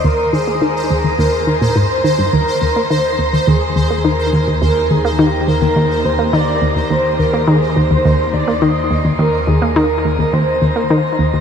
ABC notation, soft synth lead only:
X:1
M:4/4
L:1/16
Q:1/4=105
K:Cm
V:1 name="Soft synth lead"
B2 A6 B4 c4 | B4 c4 A4 B3 z | B2 A2 G2 B4 c2 d3 z | c2 B2 A2 c4 d2 e3 z |
B2 A2 B4 c6 z2 |]